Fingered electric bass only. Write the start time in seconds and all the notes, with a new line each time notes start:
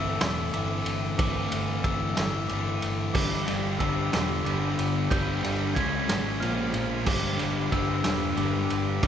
Already playing: G1
0.21 E1
0.54 G1
0.86 G1
1.19 G1
1.52 G1
1.84 G1
2.17 G1
2.51 G1
2.84 G1
3.15 G1
3.49 G1
3.81 G1
4.14 E1
4.46 G1
4.79 G1
5.11 G1
5.45 G1
5.76 C#2
6.11 G#1
6.43 A#1
6.75 A#1
7.07 G1
7.41 G1
7.72 G1
8.06 E1
8.38 G1
8.71 G1
9.03 G1